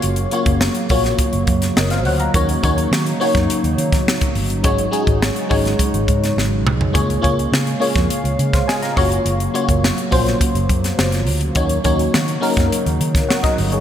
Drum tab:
HH |xxxx-xoxxxxx-xox|xxxx-xoxxxxx-xox|xxxx-xoxxxxx----|xxxx-xoxxxxx-xox|
SD |----o--o---ooo--|----o--o---oo---|----o--o---oo---|----o--o---ooo--|
T2 |----------------|----------------|--------------o-|----------------|
FT |----------------|----------------|---------------o|----------------|
BD |---o--o-o-o-----|o-o----o---o-o--|o--o--o-o-o-----|o-o----o---o--o-|

HH |xxxx-xoxxxxx-xox|xxxx-xoxxxxx-xox|
SD |----o--o---ooo--|----o--o---ooo--|
T2 |----------------|----------------|
FT |----------------|----------------|
BD |---o--o-o-o-----|o-o----o---o-o--|